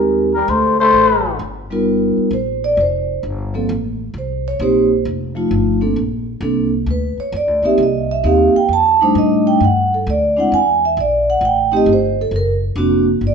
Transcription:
Already playing: upright bass D#2, vibraphone G#3 C4 D#4 G4 A#4
0.34 trombone G3, muted trumpet A#4
0.48 upright bass D2, muted trumpet C5
0.52 trombone A3
0.80 trombone A3, muted trumpet C5
0.93 upright bass A1
1.39 upright bass G1
1.70 vibraphone G3 B3 D#4 F4 A#4
2.17 muted upright bass stroke
2.31 upright bass A#1, vibraphone C5
2.64 vibraphone D5
2.77 upright bass F1, vibraphone C5
3.23 upright bass G1
3.54 vibraphone F3 A#3 C4 A4
3.69 upright bass A1
4.14 upright bass C2
4.18 vibraphone C5
4.48 vibraphone C#5
4.59 upright bass A#1, vibraphone A#3 C4 D#4 G4 C5
5.05 upright bass F1
5.35 vibraphone F3 A3 D#4 F4
5.51 upright bass G1
5.81 vibraphone A#3 C4 D4 A4
5.96 upright bass A#1
6.41 upright bass C2, vibraphone A#3 C4 D4 A4
6.86 upright bass D2
6.91 vibraphone B4
7.18 vibraphone C#5, muted upright bass stroke
7.32 upright bass F2
7.37 vibraphone D5
7.47 upright bass D2
7.62 upright bass B1, vibraphone A#3 C4 D#4 G4 E5
7.78 upright bass C2
7.83 vibraphone D#5
8.11 vibraphone E5
8.24 upright bass D#2, vibraphone A#3 C4 D#4 G4 F5
8.55 vibraphone G5, muted upright bass stroke
8.69 upright bass F2
8.73 vibraphone A5
9.01 vibraphone G3 A3 D4 D#4 C5
9.15 upright bass A2, vibraphone D#5
9.47 vibraphone G5
9.60 upright bass G2
9.65 vibraphone F#5
9.94 vibraphone A4
10.07 upright bass D2, vibraphone D5
10.37 vibraphone G#3 C4 D4 E4 F#5
10.52 upright bass E2, vibraphone G#5
10.85 vibraphone E5
10.97 upright bass B1, vibraphone D5
11.30 vibraphone F#5
11.41 upright bass A1
11.45 vibraphone G5
11.72 vibraphone A3 C4 D#4 G4
11.77 vibraphone D#5
11.86 upright bass G1
11.93 vibraphone C5
12.21 vibraphone A4
12.31 upright bass F#1
12.36 vibraphone A#4
12.76 upright bass F1, vibraphone A#3 C4 D4 F#4
13.21 upright bass G1
13.27 vibraphone D5

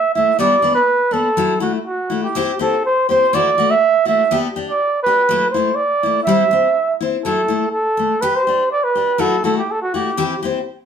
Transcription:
Already playing: muted trumpet E5
0.14 steel-string acoustic guitar A3 E4, muted trumpet E5
0.39 steel-string acoustic guitar G3 B3 D4, muted trumpet D5
0.62 steel-string acoustic guitar B3 D4
0.75 muted trumpet B4
1.11 steel-string acoustic guitar B3 D4, muted trumpet A4
1.37 steel-string acoustic guitar F#3 E4, muted steel-string acoustic guitar stroke
1.60 steel-string acoustic guitar A3 E4, muted trumpet F#4
1.87 muted trumpet F#4
2.10 steel-string acoustic guitar A3 E4
2.23 muted trumpet G4
2.35 steel-string acoustic guitar C4 E4 G4, muted steel-string acoustic guitar stroke
2.59 steel-string acoustic guitar C4 E4 G4, muted trumpet A4
2.86 muted trumpet C5
3.09 steel-string acoustic guitar C4 E4 G4, muted trumpet C5
3.33 steel-string acoustic guitar E3 A3 E4 F#4, muted trumpet D5
3.58 steel-string acoustic guitar A3 F#4
3.71 muted trumpet E5
4.05 steel-string acoustic guitar A3 E4 F#4, muted trumpet E5
4.31 steel-string acoustic guitar B3 D4 G4
4.56 steel-string acoustic guitar D4 G4
4.70 muted trumpet D5
5.03 steel-string acoustic guitar G4, muted trumpet B4
5.08 steel-string acoustic guitar D4
5.29 steel-string acoustic guitar F#3 A3 E4
5.51 steel-string acoustic guitar E4, muted trumpet C5
5.57 steel-string acoustic guitar A3
5.75 muted trumpet D5
6.03 steel-string acoustic guitar A3 E4
6.24 steel-string acoustic guitar G3, muted trumpet E5
6.29 steel-string acoustic guitar C4 E4
6.51 steel-string acoustic guitar C4, muted steel-string acoustic guitar stroke
7.01 steel-string acoustic guitar C4 E4
7.24 steel-string acoustic guitar F#3 A3 E4, muted trumpet A4
7.48 steel-string acoustic guitar A3 E4
7.72 muted trumpet A4
7.97 steel-string acoustic guitar A3, muted steel-string acoustic guitar stroke
8.21 steel-string acoustic guitar G4, muted trumpet B4, muted steel-string acoustic guitar stroke
8.36 muted trumpet C5
8.47 steel-string acoustic guitar D4 G4
8.72 muted trumpet D5
8.84 muted trumpet B4
8.95 steel-string acoustic guitar D4 G4
9.18 steel-string acoustic guitar F#3 A3 E4 F#4, muted trumpet A4
9.44 steel-string acoustic guitar A3 E4 F#4, muted trumpet A4
9.58 muted trumpet G4
9.72 muted trumpet A4
9.82 muted trumpet F#4
9.94 steel-string acoustic guitar A3 E4 F#4, muted trumpet G4
10.17 steel-string acoustic guitar E3 C4 E4 G4
10.43 steel-string acoustic guitar C4 E4 G4

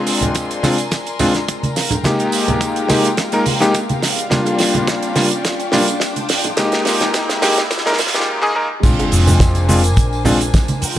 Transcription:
Already playing: electric grand piano G#3 C4 D4 F4, string section A#4 D5 G#5 C6, riser
0.07 open hi-hat, tambourine
0.21 closed hi-hat, tambourine, high bongo, high conga, low conga
0.35 kick, closed hi-hat, tambourine
0.51 closed hi-hat, tambourine
0.63 electric grand piano G#3 C4 D4 F4, snare, open hi-hat, tambourine, high conga
0.78 closed hi-hat, tambourine
0.91 kick, snare, closed hi-hat, tambourine
1.06 closed hi-hat, tambourine
1.19 electric grand piano G#3 C4 D4 F4, open hi-hat, tambourine, high conga, low conga
1.34 snare, closed hi-hat, tambourine, high bongo
1.48 kick, closed hi-hat, tambourine
1.63 closed hi-hat, tambourine, high conga
1.76 string section G#3 F4 F5 G5, snare, open hi-hat, tambourine
1.90 closed hi-hat, tambourine, high bongo, low conga
2.04 electric grand piano G#3 A#3 D#4 G4, kick, snare, closed hi-hat, tambourine, high conga
2.19 closed hi-hat, tambourine
2.32 open hi-hat, tambourine
2.47 closed hi-hat, tambourine, high conga, low conga
2.61 kick, closed hi-hat, tambourine
2.76 closed hi-hat, tambourine
2.88 electric grand piano G#3 A#3 D#4 G4, snare, open hi-hat, tambourine, high conga
3.05 closed hi-hat, tambourine
3.17 kick, snare, closed hi-hat, tambourine
3.32 electric grand piano G#3 A#3 D#4 A#4, closed hi-hat, tambourine
3.46 open hi-hat, tambourine, high conga
3.60 electric grand piano G#3 A#3 D#4 G4, snare, closed hi-hat, tambourine
3.74 kick, closed hi-hat, tambourine, high bongo
3.89 closed hi-hat, tambourine, high conga
4.02 snare, open hi-hat, tambourine
4.18 closed hi-hat, tambourine
4.30 electric grand piano G3 A#3 D4 F4, string section F4 D5 G5, kick, snare, closed hi-hat, tambourine, high conga
4.46 closed hi-hat, tambourine, high bongo
4.59 snare, open hi-hat, tambourine
4.74 closed hi-hat, tambourine, high bongo, high conga, low conga
4.87 kick, snare, closed hi-hat, tambourine
5.03 closed hi-hat, tambourine
5.16 electric grand piano G3 A#3 D4 F4, snare, open hi-hat, tambourine, high conga
5.31 closed hi-hat, tambourine
5.44 kick, snare, closed hi-hat, tambourine
5.60 closed hi-hat, tambourine
5.72 electric grand piano G3 A#3 D4 F4, snare, open hi-hat, tambourine, high conga, low conga
5.88 closed hi-hat, tambourine, high bongo
6.00 kick, snare, closed hi-hat, tambourine
6.16 closed hi-hat, tambourine, high conga
6.29 snare, open hi-hat, tambourine
6.44 closed hi-hat, tambourine, high bongo, low conga
6.57 electric grand piano G#3 A#3 D#4 G4, string section G#3 A#4 D#5, kick, snare, closed hi-hat, tambourine, high conga
6.72 snare, closed hi-hat, tambourine
6.85 snare, open hi-hat, tambourine
7.00 snare, closed hi-hat, tambourine, high conga, low conga
7.14 kick, snare, closed hi-hat, tambourine
7.29 snare, closed hi-hat, tambourine
7.42 electric grand piano G#3 A#3 D#4 G4, snare, open hi-hat, tambourine, high conga
7.58 snare, closed hi-hat, tambourine
7.71 kick, snare, closed hi-hat, tambourine
7.78 snare
7.86 electric grand piano G#3 A#3 D#4 A#4, snare, closed hi-hat, tambourine
7.93 snare
7.98 kick, snare, open hi-hat, tambourine, high conga
8.07 snare
8.14 electric grand piano G#3 A#3 D#4 G4, snare, closed hi-hat, tambourine
8.20 snare
8.42 electric grand piano G#3 A#3 D#4 G#4
8.55 electric grand piano G#3 A#3 D#4 A#4
8.83 fingered electric bass A#1, electric grand piano G#3 C4 D4 F4, string section D4 A#4 C5 G#5, kick, closed hi-hat, crash, tambourine, impact, high conga, shaker
8.99 closed hi-hat, tambourine, high bongo
9.12 fingered electric bass F1, open hi-hat, shaker
9.27 tambourine, high bongo, high conga, low conga, shaker
9.40 kick, snare, closed hi-hat, tambourine, shaker
9.55 closed hi-hat, tambourine
9.68 electric grand piano G#3 C4 D4 F4, open hi-hat, high conga, shaker
9.84 closed hi-hat, tambourine, shaker
9.96 fingered electric bass A#1, kick, closed hi-hat, tambourine, shaker
10.13 tambourine
10.25 electric grand piano G#3 C4 D4 F4, open hi-hat, high conga, low conga, shaker
10.41 closed hi-hat, tambourine, high bongo, shaker
10.54 kick, snare, closed hi-hat, tambourine, shaker
10.68 closed hi-hat, tambourine, high conga
10.82 string section G#3 F4 A#4 G5, muted fingered electric bass stroke, open hi-hat, shaker

